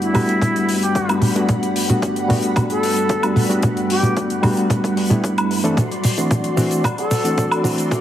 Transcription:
Already playing: G3 A3 B3 D4 F#4 F#5 B5
0.01 E4, closed hi-hat
0.13 G2 G3 A3 B3 D4 F#4, open hi-hat, mid tom, high woodblock
0.29 closed hi-hat
0.42 kick, closed hi-hat, mid tom
0.55 D1, closed hi-hat
0.68 G1, open hi-hat
0.82 G4, closed hi-hat
0.95 kick, closed hi-hat
1.08 G2 G3 A3 B3 D4 F#4, closed hi-hat, high woodblock
1.22 open hi-hat, mid tom
1.35 G3 A3 B3 D4 F#4, closed hi-hat
1.49 G1, kick, closed hi-hat, mid tom
1.63 closed hi-hat
1.76 open hi-hat
1.89 G1 G3 A3 B3 D4 F#4, closed hi-hat, mid tom
2.02 kick, closed hi-hat
2.16 closed hi-hat
2.28 G2 G3 A3 B3 D4 F#4, open hi-hat, mid tom
2.43 closed hi-hat
2.56 kick, closed hi-hat, mid tom, high woodblock
2.69 D1 A4, closed hi-hat
2.83 G1, open hi-hat
2.96 closed hi-hat
3.09 kick, closed hi-hat
3.23 G2 G3 A3 B3 D4 F#4, closed hi-hat, high woodblock
3.36 open hi-hat, mid tom
3.49 G3 A3 B3 D4 F#4, closed hi-hat
3.62 G1, kick, closed hi-hat, mid tom
3.77 closed hi-hat
3.89 G4, open hi-hat
4.03 G1 G3 A3 B3 D4 F#4, closed hi-hat, mid tom
4.17 kick, closed hi-hat
4.30 closed hi-hat
4.42 G2 G3 A3 B3 D4 F#4, open hi-hat, mid tom, high woodblock
4.57 closed hi-hat
4.70 kick, closed hi-hat, mid tom
4.84 kick, closed hi-hat
4.97 G2, open hi-hat
5.10 G3 A3 B3 D4 E4, closed hi-hat, mid tom
5.24 kick, closed hi-hat
5.38 closed hi-hat, high woodblock
5.50 G1, open hi-hat
5.64 E3 A3 C4 D4 A4, closed hi-hat
5.77 D2 F#4 D5 C6, kick, closed hi-hat, mid tom, shaker
5.92 closed hi-hat
6.04 open hi-hat, mid tom, shaker
6.17 D2 E3 A3 C4 D4 F#4, closed hi-hat, shaker
6.31 kick, closed hi-hat, mid tom, shaker
6.44 closed hi-hat
6.56 E3 A3 C4 D4 F#4, open hi-hat, mid tom, shaker
6.71 closed hi-hat, shaker
6.84 kick, closed hi-hat, mid tom, high woodblock, shaker
6.98 C2 A4, closed hi-hat
7.11 D2, open hi-hat, mid tom, shaker
7.24 E3 A3 C4 D4 F#4, closed hi-hat, shaker
7.38 kick, closed hi-hat, mid tom, shaker
7.51 closed hi-hat, high woodblock
7.63 E3 A3 C4 D4 F#4, open hi-hat, mid tom, shaker
7.78 closed hi-hat, shaker
7.91 D2, kick, closed hi-hat, mid tom, shaker

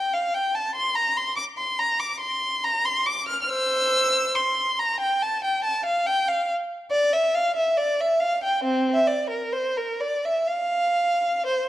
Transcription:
Already playing: G5
0.14 F5
0.34 G5
0.55 A5
0.75 C6
0.95 A#5
1.17 C6
1.36 D6
1.57 C6
1.79 A#5
2.00 D6
2.20 C6
2.64 A#5
2.85 C6
3.06 D6
3.28 F6
3.42 F6
3.49 C5 E6
4.35 C6
4.79 A#5
5.00 G5
5.22 A5
5.44 G5
5.64 A5
5.86 F5
6.06 G5
6.28 F5
6.91 D5
7.13 E5
7.35 F5
7.56 E5
7.77 D5
8.00 E5
8.20 F5
8.44 G5
8.64 C4
8.94 E5
9.07 D5
9.30 A#4
9.53 C5
9.77 A#4
10.01 D5
10.25 E5
10.48 F5
11.46 C5

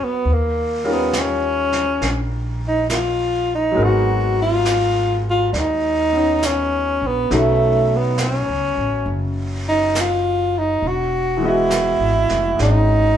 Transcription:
Already playing: F#3 C#4 D#4 A#4 F5
0.05 B3
0.25 D#2, brush sweep
0.33 A#3
0.84 G3 C#4 D#4 F4 A#4
0.93 B3
1.13 snare, hi-hat pedal
1.21 C#4
1.72 snare
2.01 A#1, brush sweep, snare
2.68 D#4
2.90 E4 F4, snare, hi-hat pedal
3.55 D#4
3.72 F#3 G#3
3.77 G#1 B3 A#4, brush sweep
3.83 D#4 F#4
4.42 F4
4.65 snare, hi-hat pedal
5.30 F4
5.53 D#2 D4, brush sweep, snare
5.59 D#4
6.13 B3 C#4
6.17 D#4
6.43 C#4, snare, hi-hat pedal
7.02 A#1
7.07 B3
7.30 B1 F#3 A3 B3 C#4 D#4, brush sweep, snare
7.96 B3
8.18 snare, hi-hat pedal
8.24 C#4
8.48 C#2
8.77 A1
9.06 F#1, brush sweep
9.69 D#4
9.95 snare, hi-hat pedal
10.00 F4
10.59 D#4
10.82 E1, brush sweep
10.87 F#4
11.37 E3 G#3
11.43 B3 D#5
11.48 E4 F#4
11.70 snare, hi-hat pedal
11.99 G#1
12.29 F1, snare
12.57 G#1 G#3 C#4 D#4, brush sweep, snare
12.62 D#4

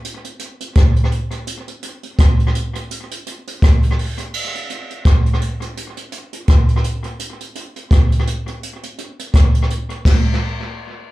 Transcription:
0.05 closed hi-hat
0.24 closed hi-hat
0.39 closed hi-hat
0.60 closed hi-hat
0.75 kick, cross-stick, closed hi-hat
0.96 closed hi-hat
1.12 closed hi-hat
1.31 closed hi-hat
1.47 closed hi-hat
1.68 closed hi-hat
1.83 closed hi-hat
2.03 closed hi-hat
2.18 kick, cross-stick, closed hi-hat
2.40 closed hi-hat
2.55 closed hi-hat
2.75 closed hi-hat
2.91 closed hi-hat
3.11 closed hi-hat
3.26 closed hi-hat
3.47 closed hi-hat
3.62 kick, cross-stick, closed hi-hat
3.83 closed hi-hat
3.99 open hi-hat
4.18 closed hi-hat
4.34 crash
4.55 closed hi-hat
4.70 closed hi-hat
4.90 closed hi-hat
5.05 kick, cross-stick, closed hi-hat
5.26 closed hi-hat
5.41 closed hi-hat
5.62 closed hi-hat
5.77 closed hi-hat
5.97 closed hi-hat
6.12 closed hi-hat
6.33 closed hi-hat
6.48 kick, cross-stick, closed hi-hat
6.69 closed hi-hat
6.84 closed hi-hat
7.04 closed hi-hat
7.19 closed hi-hat
7.41 closed hi-hat
7.55 closed hi-hat
7.76 closed hi-hat
7.91 kick, cross-stick, closed hi-hat
8.12 closed hi-hat
8.27 closed hi-hat
8.47 closed hi-hat
8.63 closed hi-hat
8.83 closed hi-hat
8.98 closed hi-hat
9.19 closed hi-hat
9.34 kick, cross-stick, closed hi-hat
9.55 closed hi-hat
9.70 closed hi-hat
9.90 closed hi-hat
10.05 kick, snare, crash

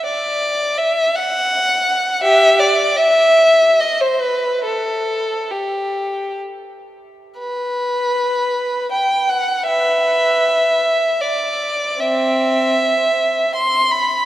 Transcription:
0.05 D5
0.78 E5
1.16 F#5
2.23 G4 E5
2.60 D5
2.96 E5
3.80 D#5
4.01 C5
4.21 B4
4.64 A4
5.51 G4
7.39 B4
8.92 G5
9.29 F#5
9.67 B4 E5
11.21 D5
11.99 C4 E5
13.55 C6
13.92 B5

